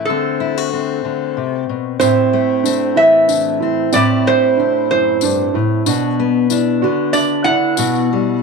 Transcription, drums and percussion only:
2.01 tambourine medium
2.65 tambourine medium
3.29 tambourine medium
3.93 tambourine loud
5.21 tambourine medium
5.86 tambourine loud
6.50 tambourine loud
7.13 tambourine medium
7.77 tambourine loud
7.95 tambourine soft

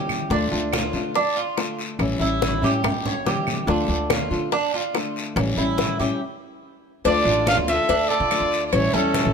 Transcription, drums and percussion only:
0.09 high conga medium
0.09 short guiro medium
0.09 claves medium
0.31 high bongo medium
0.31 long guiro medium
0.52 high conga soft
0.73 high bongo medium
0.73 high conga medium
0.73 short guiro medium
0.73 claves medium
0.93 high conga soft
0.93 short guiro medium
1.15 high bongo medium
1.15 high conga soft
1.15 long guiro medium
1.37 high conga soft
1.57 high bongo medium
1.57 low bongo medium
1.57 high conga soft
1.57 short guiro medium
1.57 claves medium
1.79 short guiro medium
1.99 high bongo medium
1.99 high conga soft
1.99 long guiro medium
1.99 claves medium
2.21 high bongo soft
2.21 high conga soft
2.42 high bongo medium
2.42 high conga loud
2.42 short guiro medium
2.63 high bongo soft
2.63 short guiro medium
2.84 high bongo medium
2.84 high conga soft
2.84 low conga medium
2.84 long guiro medium
2.84 claves medium
3.06 high bongo soft
3.06 high conga soft
3.06 low conga medium
3.26 high bongo medium
3.26 low bongo medium
3.26 high conga medium
3.26 short guiro medium
3.47 high conga medium
3.47 short guiro medium
3.47 claves medium
3.68 high bongo medium
3.68 high conga soft
3.68 long guiro medium
3.90 high conga soft
4.10 high bongo medium
4.10 high conga loud
4.10 short guiro medium
4.10 claves medium
4.31 high conga soft
4.31 short guiro medium
4.52 high bongo medium
4.52 high conga soft
4.52 long guiro medium
4.74 high conga soft
4.94 high bongo medium
4.94 low bongo medium
4.94 high conga soft
4.94 short guiro medium
4.94 claves medium
5.16 short guiro medium
5.37 high bongo medium
5.37 long guiro medium
5.37 claves medium
5.57 high bongo soft
5.57 high conga soft
5.78 high bongo medium
5.78 high conga loud
5.78 short guiro medium
6.00 high bongo soft
6.00 short guiro medium
7.05 cowbell loud
7.05 high conga soft
7.05 long guiro medium
7.26 high conga soft
7.47 cowbell medium
7.47 high conga loud
7.47 short guiro medium
7.47 claves medium
7.68 cowbell medium
7.68 high conga soft
7.68 short guiro medium
7.89 cowbell loud
7.89 high conga soft
7.89 long guiro medium
8.10 high conga soft
8.31 cowbell medium
8.31 high conga soft
8.31 short guiro medium
8.31 claves medium
8.51 short guiro medium
8.72 cowbell loud
8.72 high conga soft
8.72 long guiro medium
8.72 claves medium
8.94 high conga soft
9.14 cowbell medium
9.14 high conga loud
9.14 short guiro medium

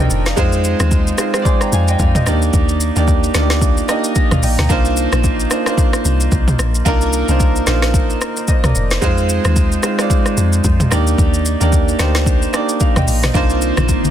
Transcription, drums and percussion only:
0.10 shaker loud
0.26 cross-stick medium
0.26 snare medium
0.26 shaker medium
0.37 kick loud
0.37 shaker medium
0.53 shaker medium
0.64 shaker loud
0.80 cross-stick loud
0.80 shaker medium
0.91 kick loud
0.91 shaker medium
1.07 shaker medium
1.18 cross-stick loud
1.18 shaker loud
1.34 cross-stick loud
1.34 shaker medium
1.45 kick loud
1.45 shaker medium
1.61 cross-stick medium
1.61 shaker medium
1.73 shaker medium
1.88 shaker medium
1.99 kick loud
1.99 shaker medium
2.15 mid tom loud
2.15 shaker medium
2.26 cross-stick loud
2.26 shaker loud
2.42 shaker medium
2.53 kick loud
2.53 shaker medium
2.69 shaker medium
2.81 shaker loud
2.96 shaker medium
3.08 kick loud
3.08 shaker medium
3.24 shaker medium
3.34 cross-stick medium
3.34 snare medium
3.34 shaker loud
3.50 cross-stick loud
3.50 snare medium
3.50 shaker medium
3.61 kick loud
3.61 shaker medium
3.77 shaker medium
3.89 cross-stick loud
3.89 shaker medium
4.04 shaker medium
4.15 kick loud
4.15 shaker medium
4.31 cross-stick medium
4.31 mid tom loud
4.31 shaker medium
4.43 open hi-hat medium
4.43 shaker loud
4.58 cross-stick medium
4.58 snare medium
4.58 mid tom medium
4.58 shaker medium
4.70 kick loud
4.70 shaker medium
4.85 shaker medium
4.97 shaker loud
5.12 cross-stick loud
5.12 shaker medium
5.24 kick medium
5.24 shaker medium
5.40 shaker medium
5.51 cross-stick loud
5.51 shaker loud
5.66 cross-stick loud
5.66 shaker medium
5.78 kick loud
5.78 shaker medium
5.93 cross-stick loud
5.93 shaker medium
6.05 shaker medium
6.20 shaker medium
6.32 kick loud
6.32 shaker medium
6.48 mid tom loud
6.48 shaker medium
6.59 cross-stick loud
6.59 shaker loud
6.75 shaker medium
6.86 kick loud
6.86 shaker medium
7.01 shaker medium
7.13 shaker loud
7.28 shaker medium
7.40 kick loud
7.40 shaker medium
7.56 shaker medium
7.67 cross-stick loud
7.67 snare medium
7.67 shaker loud
7.82 cross-stick loud
7.82 snare medium
7.82 shaker medium
7.94 kick loud
7.94 shaker medium
8.10 shaker medium
8.21 cross-stick loud
8.21 shaker medium
8.37 shaker medium
8.48 kick loud
8.48 shaker medium
8.64 cross-stick medium
8.64 mid tom loud
8.64 shaker medium
8.75 shaker loud
8.91 cross-stick medium
8.91 snare medium
8.91 shaker medium
9.02 kick loud
9.02 shaker medium
9.18 shaker medium
9.29 shaker loud
9.45 cross-stick loud
9.45 shaker medium
9.56 kick loud
9.56 shaker medium
9.72 shaker medium
9.83 cross-stick loud
9.83 shaker loud
9.99 cross-stick loud
9.99 shaker medium
10.10 kick loud
10.10 shaker medium
10.26 cross-stick medium
10.26 shaker medium
10.37 shaker medium
10.53 shaker medium
10.64 kick loud
10.64 shaker medium
10.80 mid tom loud
10.80 shaker medium
10.92 cross-stick loud
10.92 shaker loud
11.07 shaker medium
11.18 kick loud
11.18 shaker medium
11.34 shaker medium
11.46 shaker loud
11.61 shaker medium
11.73 kick loud
11.73 shaker medium
11.88 shaker medium
11.99 cross-stick medium
11.99 snare medium
11.99 shaker loud
12.15 cross-stick loud
12.15 snare medium
12.15 shaker medium
12.26 kick loud
12.26 shaker medium
12.42 shaker medium
12.54 cross-stick loud
12.54 shaker medium
12.69 shaker medium
12.80 kick loud
12.80 shaker medium
12.96 cross-stick medium
12.96 mid tom loud
12.96 shaker medium
13.08 open hi-hat medium
13.08 shaker loud
13.23 cross-stick loud
13.23 snare medium
13.23 mid tom medium
13.23 shaker medium
13.35 kick loud
13.35 low conga medium
13.35 shaker medium
13.50 shaker medium
13.62 shaker loud
13.77 cross-stick loud
13.77 high conga medium
13.77 shaker medium
13.89 kick loud
13.89 shaker medium
14.05 high conga medium
14.05 shaker medium

